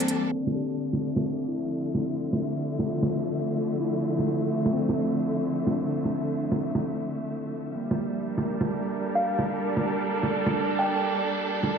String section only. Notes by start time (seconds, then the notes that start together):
Already playing: G3 D4 A4 A#4
0.32 D3
0.80 A3
1.08 E5
1.54 F3
7.76 G3
8.08 D4
8.26 A#4
8.62 A4